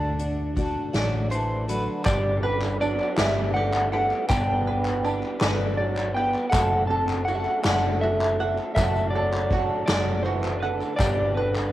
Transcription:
Already playing: D2 D3 A3 D4 F#4 A4
0.19 A3 D4 F#4, closed hi-hat
0.56 D3 A3 D4 F#4, kick, closed hi-hat
0.93 A1 D3 F#3 A3 D4 F#4 D5, snare, closed hi-hat
1.30 D3 E3 A3 D4 F#4 C5, closed hi-hat
1.68 D3 F#3 A3 D4 F#4 B4, closed hi-hat
2.05 G1 G2 D3 G3 B3 D4 G4 D5 G5, kick, clap, ride, tambourine
2.37 C3 A4
2.43 D3 B4, ride
2.61 clap, tambourine
2.80 F#3 B3 D4 D5, ride, tambourine
3.00 clap
3.17 G1 G2 D3 G3 B3 D4 G4 D5 E5, snare, clap, ride, tambourine
3.54 A3 G4 F#5, ride
3.73 clap
3.91 G3 A3 B3 D4 G4 F#5 B5, ride
4.11 clap
4.28 G1 G2 D3 G3 B3 D4 G4 G5, kick, clap, ride, tambourine
4.67 B4, ride
4.85 clap, tambourine
5.04 G3 B3 D4 G4, ride, tambourine
5.23 clap
5.40 G1 D3 B3 D4 B4 D5, snare, clap, ride, tambourine
5.44 G2 D3
5.77 F#3 D5, ride
5.97 clap
6.14 B3 D4 G4 G5, ride
6.18 G3
6.34 clap
6.50 F#1 F#3 A3 F#4 F#5, kick, clap, ride
6.54 A3 D4 A4, tambourine
6.87 C4 A4 A5, ride
7.09 clap, tambourine
7.25 F#3 A3 D4 F#4 F#5, ride, tambourine
7.30 G3 A4
7.35 A3 E5
7.40 F#5
7.45 clap
7.62 F#1 A3 D4 A4 D5 F#5, snare, clap, ride, tambourine
7.67 F#3
7.99 A3 E5, ride
8.03 F#4
8.21 clap
8.40 A3 D4 A4 F#5, ride
8.58 clap
8.74 F#1 F#3 A3 D4 F#4 A4 E5, kick, clap, ride, tambourine
8.96 tambourine
9.10 F#3 D5
9.14 A4, ride
9.33 clap
9.50 F#3 A3 D4 F#4 A4, kick, clap, ride
9.86 F#1 F#3 A3 D4 A4 D5, snare, clap, ride, tambourine
10.22 E3 F#4 C5, clap, ride
10.44 clap
10.60 D3 A4 B4 F#5, ride
10.64 A3 D4
10.82 clap, tambourine
10.96 G1 G2 G3 D5 G5, kick, clap, ride
11.00 D3 G3 B3 D4 G4, tambourine
11.35 D3 B4, ride
11.55 clap, tambourine

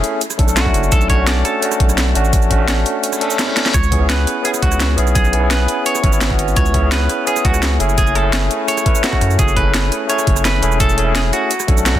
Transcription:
Already playing: A3 C#4 E4 G#4
0.04 closed hi-hat, cabasa
0.21 closed hi-hat, cabasa
0.30 cross-stick, cabasa
0.38 B1 A3 C#4 D4 A4, kick, closed hi-hat
0.47 A3 C#4 D4 A4, cabasa
0.57 F#4, snare, closed hi-hat, cabasa
0.63 A3 C#4 D4, kick, cross-stick
0.68 E4
0.74 F#1, closed hi-hat, cabasa
0.83 cabasa
0.92 B1 A4, kick, closed hi-hat, cabasa
1.01 cabasa
1.08 A3 C#4 D4 F#4 C#5, kick, closed hi-hat
1.16 A3 C#4 D4
1.21 F#4
1.27 D5, snare, closed hi-hat, cabasa
1.45 A4, cross-stick, closed hi-hat, cabasa
1.60 A3 C#4 D4, closed hi-hat, cabasa
1.65 F#4
1.72 cross-stick, cabasa
1.80 B1, kick, closed hi-hat
1.89 cross-stick, cabasa
1.98 snare, closed hi-hat, cabasa
2.14 A1 A3 C#4 D4 F#4, closed hi-hat, cabasa
2.25 cabasa
2.33 kick, closed hi-hat, cabasa
2.42 cabasa
2.49 A3 C#4 D4 F#4, kick, closed hi-hat
2.57 A3 C#4 D4
2.62 F#4
2.68 snare, closed hi-hat, cabasa
2.86 closed hi-hat, cabasa
3.04 closed hi-hat, reverse cymbal, cabasa
3.13 cross-stick, cabasa
3.20 A3 C#4 D4 A4, closed hi-hat
3.29 A3 C#4 D4 A4, cabasa
3.39 snare, closed hi-hat, cabasa
3.47 A3 C#4 D4 E4, cross-stick
3.57 snare, closed hi-hat, cabasa
3.66 snare, cabasa
3.74 C#2 C#5, kick, closed hi-hat, cabasa
3.83 cabasa
3.91 B3 C#4 E4 G#4, kick, closed hi-hat
3.99 B3 C#4 E4
4.03 G#4
4.10 B4, snare, closed hi-hat, cabasa
4.27 cross-stick, closed hi-hat, cabasa
4.42 B3 C#4 E4 G#4, closed hi-hat, cabasa
4.47 G#4
4.54 cross-stick, cabasa
4.62 C#2 F#4, kick, closed hi-hat
4.72 cross-stick, cabasa
4.80 snare, closed hi-hat, cabasa
4.97 B1 B3 C#4 E4 G#4, closed hi-hat, cabasa
5.07 cabasa
5.15 G#4, kick, closed hi-hat, cabasa
5.25 cabasa
5.32 B3 C#4 E4 G#4, closed hi-hat
5.40 B3 C#4 E4
5.45 G#4
5.51 B4, snare, closed hi-hat, cabasa
5.68 closed hi-hat, cabasa
5.86 C#5, closed hi-hat, cabasa
5.95 cross-stick, cabasa
6.02 G#1 B3 C#4 E4 C#5, kick, closed hi-hat
6.12 B3 C#4 E4 C#5, cabasa
6.21 snare, closed hi-hat, cabasa
6.28 B3 C#4 E4, kick, cross-stick
6.33 F#4
6.39 G#1, closed hi-hat, cabasa
6.48 cabasa
6.56 C#2 C#5, kick, closed hi-hat, cabasa
6.66 cabasa
6.73 B3 C#4 E4 G#4, kick, closed hi-hat
6.81 B3 C#4 E4
6.86 G#4
6.92 B4, snare, closed hi-hat, cabasa
7.09 cross-stick, closed hi-hat, cabasa
7.25 B3 C#4 E4 G#4, closed hi-hat, cabasa
7.30 G#4
7.36 cross-stick, cabasa
7.45 C#2 F#4, kick, closed hi-hat
7.54 cross-stick, cabasa
7.63 snare, closed hi-hat, cabasa
7.79 F#1 A3 C#4 E4 G#4, closed hi-hat, cabasa
7.89 cabasa
7.98 G#4, kick, closed hi-hat, cabasa
8.07 cabasa
8.14 A3 C#4 E4 G#4 A4, closed hi-hat
8.22 A3 C#4 E4
8.27 G#4
8.33 B4, snare, closed hi-hat, cabasa
8.51 closed hi-hat, cabasa
8.68 C#5, closed hi-hat, cabasa
8.77 cross-stick, cabasa
8.85 A3 C#4 E4 B4, kick, closed hi-hat
8.94 A3 C#4 E4 B4, cabasa
9.04 F#4, snare, closed hi-hat, cabasa
9.10 A3 C#4 E4, kick, cross-stick
9.15 F#4
9.21 F#2, cross-stick, closed hi-hat, cabasa
9.30 cabasa
9.39 F#1 G#4, kick, closed hi-hat, cabasa
9.48 cabasa
9.55 A3 C#4 E4 G#4 B4, kick, closed hi-hat
9.63 A3 C#4 E4
9.68 G#4
9.74 snare, closed hi-hat, cabasa
9.92 cross-stick, closed hi-hat, cabasa
10.07 A3 C#4 E4 C#5, closed hi-hat, cabasa
10.12 G#4
10.19 cross-stick, cabasa
10.27 F#1, kick, closed hi-hat
10.36 cross-stick, cabasa
10.45 B4, snare, closed hi-hat, cabasa
10.61 E1 A3 C#4 E4 G#4, closed hi-hat, cabasa
10.72 cabasa
10.80 A4, kick, closed hi-hat, cabasa
10.89 cabasa
10.96 A3 C#4 E4 G#4, closed hi-hat
11.04 A3 C#4 E4
11.09 G#4
11.15 G#4, snare, closed hi-hat, cabasa
11.33 F#4, closed hi-hat, cabasa
11.51 closed hi-hat, cabasa
11.60 cross-stick, cabasa
11.67 B1 A3 C#4 D4 A4, kick, closed hi-hat
11.76 A3 C#4 D4 A4, cabasa
11.86 F#4, snare, closed hi-hat, cabasa
11.93 A3 C#4 D4, kick, cross-stick

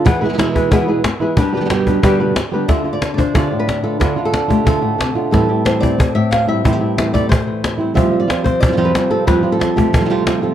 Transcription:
0.05 E3 B3 E4 G#4 B4, muted nylon-string guitar stroke, cajon bass
0.21 B2 E3 G#3 B3 E4 G#4 B4, cajon slap
0.25 B2 E3 G#3 B3 E4
0.29 B2 G#3 B3 E4
0.34 E2 E3 G#3 B3 E4
0.38 B2 E3 G#3 B3 E4, muted nylon-string guitar stroke, cajon slap
0.55 E4 G#4 B4, cajon bass
0.71 E2 B2 E3 G#3 B3 E4 G#4 B4, cajon bass
0.88 E4 G#4 B4
1.04 muted nylon-string guitar stroke, cajon slap
1.20 E3 G#3 B3 E4 G#4 B4
1.37 G3 D4 G4 B4, muted nylon-string guitar stroke, cajon bass
1.53 B2 D3 G3 B3 D4 G4 B4
1.57 B2 B3 G4
1.61 D3 G3 B3 G4
1.65 B2 D3 G3 B3 G4
1.70 G2 B2 D3 G3 B3 G4, muted nylon-string guitar stroke, cajon slap
1.87 D4 G4 B4, cajon bass
2.02 G2 B2 D3 G3 B3 D4 G4 B4, cajon bass
2.20 D4 G4 B4
2.35 muted nylon-string guitar stroke, cajon slap
2.52 D3 G3 B3 D4 G4 B4
2.68 D3 A3 D4 F4 E5, cajon bass, cajon slap
2.84 A3 D4 F4, cajon slap
2.93 D5
3.02 muted nylon-string guitar stroke, cajon slap
3.14 D4 D5
3.18 A3 D4 F4 C5, cajon bass
3.34 D3 A3 D4 F4 D5, cajon bass
3.51 A2 A3 D4 F4
3.60 B4
3.67 muted nylon-string guitar stroke, cajon slap
3.84 A3 D4 F4 A4
4.00 D3 A3 D4 F4 B4, cajon bass, cajon slap
4.16 A3 D4 F4
4.25 A4
4.33 D4, muted nylon-string guitar stroke, cajon slap
4.48 A3 D4 F4 G4, cajon bass
4.65 D3 A3 D4 F4 A4, cajon bass
4.82 A2 A3 D4 F4
4.98 C3, muted nylon-string guitar stroke, cajon slap
5.15 B2 A3 D4 F4
5.31 A2 E3 G3 C4 E4 A4, cajon bass, cajon slap
5.49 G3 C4 E4 G4, cajon slap
5.65 E3 G3 C4 E4 C5, cajon slap
5.80 G3 C4 E4 D5, cajon bass
5.98 A4, muted nylon-string guitar stroke, cajon bass
6.15 A2 E5
6.31 F5, cajon slap
6.48 G3 C4 E4 E5
6.64 A2 E3 G3 C4 E4, cajon bass
6.73 G4
6.80 G3 C4 E4 G4, cajon slap
6.97 E3 G3 C4 E4, cajon slap
7.13 G3 A3 C4 E4 D5, cajon bass
7.29 C5, muted nylon-string guitar stroke, cajon bass
7.47 E3
7.64 cajon slap
7.78 G3 C4 E4 C5
7.94 F2 A2 F3 G3 C4 F4 E5, cajon bass
8.11 F3 G3 C4 F4
8.20 D5
8.28 F3 G3 C4 F4, cajon slap
8.44 C4 C5, cajon bass
8.60 D5, muted nylon-string guitar stroke, cajon bass
8.68 A2 F3 G3 C4 F4
8.73 A2 F3 G3 C4 F4
8.77 F2 A2 C3 F3 G3 C4 F4
8.85 B4
8.93 F3 G3 C4 F4, cajon slap
9.10 F3 G3 C4 F4 A4
9.27 F2 A2 F3 G3 C4 F4 B4, cajon bass, cajon slap
9.43 F3 G3 C4 F4 G4
9.52 A4
9.59 F3 G3 C4 F4, cajon slap
9.76 A3 G4, cajon bass
9.93 A2 F3 A4, muted nylon-string guitar stroke, cajon bass
9.97 A2 G3 C4 F4
10.01 F3 G3 C4 F4
10.05 A2 C3 F3 G3 C4 F4
10.10 F2 A2 F3 G3 C4 F4
10.25 F3 G3 C4 F4, cajon slap
10.42 F3 G3 C4 F4 A4

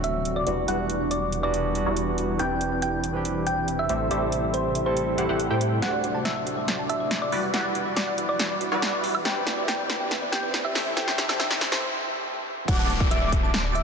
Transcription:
Already playing: D1 C3 D3 F#3 A3 C4 D4 F#4 C5 D5
0.04 E5, closed hi-hat
0.25 closed hi-hat
0.36 D5
0.46 E1 E3 G3 B3 D4 E4 F#4 B4 D5, closed hi-hat
0.66 E1 E3 G3 B3 D4 E4 F#4 B4 D5 F#5, closed hi-hat
0.90 closed hi-hat
1.11 D5, closed hi-hat
1.32 closed hi-hat
1.42 E3 G3 B3 D4 F#4 D5
1.54 closed hi-hat
1.73 E3 G3 B3 D4, closed hi-hat
1.77 F#4
1.86 E1 G3 E4 F#4 B4 D5
1.97 closed hi-hat
2.18 closed hi-hat
2.37 E1 C3 E3 C4 D4 E4 G4 B4 D5 G5, closed hi-hat
2.41 G4
2.61 closed hi-hat
2.82 G5, closed hi-hat
3.04 closed hi-hat
3.13 E3 C4 D4 G4 B4
3.25 closed hi-hat
3.47 G5, closed hi-hat
3.68 closed hi-hat
3.79 E5
3.89 A1 G3 A3 C4 E4 G4 A4 C5 E5, closed hi-hat
4.09 A1 G3 A3 C4 E4 G4 C5 D5 E5, closed hi-hat
4.13 A4
4.32 closed hi-hat
4.54 C5, closed hi-hat
4.75 closed hi-hat
4.85 G3 A3 C4 E4 A4 C5
4.97 closed hi-hat
5.16 A1 G3 A3 C4 E4 G4 C5 F#5, closed hi-hat
5.20 A4
5.29 A1 A3 E4 G4 C5 F#5
5.40 closed hi-hat
5.50 A2 A3 E4 G4 C5 G5
5.61 closed hi-hat
5.82 D1 F#3 A3 D4 F#4 C5 D5 F#5, snare, closed hi-hat, riser
5.93 D5
6.04 F#4, closed hi-hat
6.15 A5
6.25 E5 A5, snare, closed hi-hat
6.36 D5
6.47 F#4, closed hi-hat
6.58 D5
6.68 F#4, snare, closed hi-hat
6.79 A5
6.89 E5 A5, closed hi-hat
7.00 D5
7.11 F#4, snare, closed hi-hat
7.22 D5
7.32 E1 E3 G3 E4 F#4 B4 D5, open hi-hat
7.43 F#5
7.54 E1 G3 E4 F#4 B4 D5 F#5, snare, closed hi-hat
7.65 D5
7.75 F#4, closed hi-hat
7.86 D5
7.97 F#4 D5, snare, closed hi-hat
8.07 F#5
8.18 F#5, closed hi-hat
8.29 D5
8.39 F#4, snare, closed hi-hat
8.50 D5
8.61 F#4, closed hi-hat
8.72 E1 G3 E4 F#4 B4 D5 F#5
8.82 F#5, snare, closed hi-hat
8.93 D5
9.04 F#4, open hi-hat
9.15 D5, high woodblock
9.25 E1 C3 C4 E4 G4 B4 D5 G5, snare, closed hi-hat
9.36 G5
9.46 G5, snare, closed hi-hat
9.57 D5
9.68 G4 G5, snare, closed hi-hat
9.79 D5
9.89 G4, snare, closed hi-hat
10.00 G5
10.11 G5, snare, closed hi-hat
10.22 D5
10.32 G4 G5, snare, closed hi-hat
10.43 D5
10.54 G4, snare, closed hi-hat
10.65 E5 G5
10.75 A1 G3 A3 E4 G4 C5 E5 A5, snare, open hi-hat
10.86 E5
10.96 A1 A3 E4 G4 C5 E5 G5, snare, closed hi-hat
11.07 E5, snare
11.18 G4, snare, closed hi-hat
11.29 A5, snare, high woodblock
11.39 E5 A5, snare, closed hi-hat
11.50 E5, snare
11.61 G4, snare, closed hi-hat
11.72 C5 E5, snare
12.68 D1 A3 D4 F#4 C5 D5 F#5 D6, kick, closed hi-hat, crash, downlifter
12.79 A5
12.89 A5, closed hi-hat
13.00 D5, kick
13.11 F#4 E5, closed hi-hat
13.22 D5
13.32 F#4, kick, closed hi-hat
13.43 A5
13.54 A5, snare, closed hi-hat
13.64 D5
13.75 F#4 E5, closed hi-hat

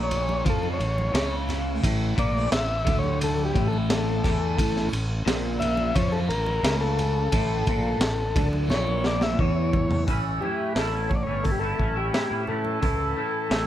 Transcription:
Already playing: A#1 A#2 C#3 E3 A3 E4
0.03 C#5
0.11 ride, low conga
0.29 high conga
0.44 F2 C#3 F3, kick, ride, low conga
0.50 A4
0.63 high conga
0.73 C#5
0.79 A1 A2, ride
0.98 high conga
1.10 C#2 E3
1.14 C#3, snare, ride
1.49 snare, ride, low conga
1.72 A3
1.83 A1 A2, kick, ride
2.16 A#1 A#2 D5, kick, ride
2.33 A3
2.52 A1 A2 E5, snare, ride
2.85 D2 D3, kick, ride, low conga
2.96 A2 C#5
3.04 high conga
3.21 A4, ride, low conga
3.38 high conga
3.45 G4
3.54 A1 A2, kick, ride
3.58 E3
3.67 A4
3.73 high conga
3.90 A4, snare, ride
4.21 E2 E3 A3, kick, low conga
4.25 snare, ride
4.58 A1 A2, kick, ride
4.77 snare
4.84 C#4
4.92 A1 A2, ride
5.26 A#1 A#2, snare, ride
5.48 C#3
5.60 E5, ride, low conga
5.77 high conga
5.95 F2 F3 C#5, kick, ride, low conga
6.10 E3 A4, high conga
6.29 A1 A2 A#4, ride
6.46 high conga
6.63 C#2 C#3, snare, ride
6.72 A3
6.81 A4
6.99 ride, low conga
7.32 A1 A2 A3, kick, ride
7.66 A#1 A#2, kick, ride, low conga
7.99 A1 A2, snare, ride
8.35 D2 D3, kick, ride, low conga
8.53 high conga
8.60 E3
8.68 A#1 A#2 C#5, snare, high conga, low conga
8.87 high conga
9.04 D5, snare
9.21 A3 E5, snare, high conga
9.39 E2 E3 C#5, kick
9.73 kick, low conga
9.85 A3
9.91 floor tom
10.07 A1 A2 E3 A3 C#4 E4, kick, open hi-hat
10.41 E3 A3 C#4 E4 G4, high conga
10.75 A1 A2 E3 A3 C#4 E4 A4, snare, open hi-hat
10.92 A3 C#4 E4
11.09 C#5, muted clean electric guitar stroke, kick, low conga
11.15 D5
11.23 G1 E4 C#5
11.28 A3 C#4
11.44 A4, kick, open hi-hat
11.52 G4
11.59 A3 C#4 E4 A4
11.78 A1 E3 A3 C#4 E4, kick, high conga
11.96 A3 C#4 E4 G4
12.12 A2 E3 A3 C#4 E4, snare, open hi-hat
12.30 A2 A3 C#4 E4
12.47 E3 A3 C#4 E4 A4, low conga
12.64 high conga
12.80 C#2 A2 E3 A3 C#4 E4 A4, kick, open hi-hat
13.15 E3 A3 C#4 E4
13.50 A1 A2 E3 A3 C#4 E4, snare, open hi-hat

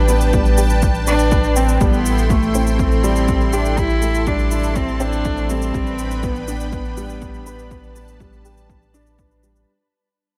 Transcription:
Already playing: A1 G3 B3 D4 B4 G5 A5
0.08 B3, shaker
0.21 shaker
0.33 G3, kick, shaker
0.46 shaker
0.58 G4, shaker
0.70 shaker
0.82 kick, shaker
0.95 shaker
1.07 D4 B4, shaker
1.19 shaker
1.32 B4, kick, shaker
1.44 shaker
1.56 C4 G5, shaker
1.69 shaker
1.81 A1 G3 B3 E4 A4 G5 C6, kick, shaker
1.93 shaker
2.06 shaker
2.18 shaker
2.30 A3, kick, shaker
2.43 shaker
2.55 C4, shaker
2.67 shaker
2.79 A3 C4, kick, shaker
2.92 shaker
3.04 G3, shaker
3.16 shaker
3.28 kick, shaker
3.41 shaker
3.53 D4 G4, shaker
3.65 shaker
3.78 E4 G4 A5, kick, shaker
3.90 shaker
4.02 A3, shaker
4.15 shaker
4.27 G3 D4, kick, shaker
4.39 shaker
4.51 E4, shaker
4.64 shaker
4.76 C4, kick, shaker
4.88 shaker
5.00 C4 D4, shaker
5.13 shaker
5.25 A3, kick, shaker
5.37 shaker
5.50 G3 C4, shaker
5.62 shaker
5.74 A1 G3 D4 B4 G5 B5, kick, shaker
5.87 shaker
5.99 shaker
6.11 shaker
6.23 B3, kick, shaker
6.36 shaker
6.48 B3 D4, shaker
6.60 shaker
6.72 B3, kick, shaker
6.85 shaker
6.97 G3, shaker
7.10 shaker
7.22 kick, shaker
7.34 shaker
7.46 B4, shaker
7.59 shaker
7.71 B4 A5, kick, shaker
7.83 shaker
7.95 B3, shaker
8.08 shaker
8.20 G3, kick, shaker
8.33 shaker
8.45 G4, shaker
8.58 shaker
8.70 kick, shaker
8.82 shaker
8.94 D4, shaker
9.07 shaker
9.18 B3, kick, shaker
9.31 shaker
9.43 G3, shaker
9.56 shaker

